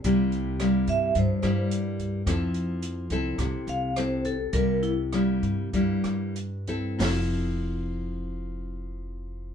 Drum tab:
HH |xxxxxxxx|xxxxxxxx|xxxxxxxx|o-------|
SD |--r--r--|r---r-r-|--r--r--|o-------|
BD |o--oo--o|o--oo--o|o--oo--o|--------|